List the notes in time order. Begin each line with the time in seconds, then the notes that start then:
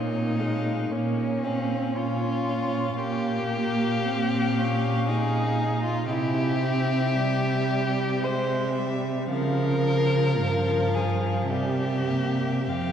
Already playing: A#2 A#3 D#4 C#5
0.39 G#3 F5
0.91 A#2 A#3 C#4 C#5
1.44 C4 F5
1.96 A#2 C#4 F4 C#5
2.49 F5
3.00 A#2 A#3 G4 F5
4.06 C4
4.59 C#4
5.08 D#4 G#4
5.84 F4
6.10 C3 E4 G4 E5
6.64 C4
7.18 G3
8.24 G#3 C5 E5
8.78 G3
9.32 C#3 F3 A#4 F5
10.40 G2 F5
10.94 G#4
11.50 C3 G3 G4 E5
12.09 A#3
12.68 F2 C4 G4 F5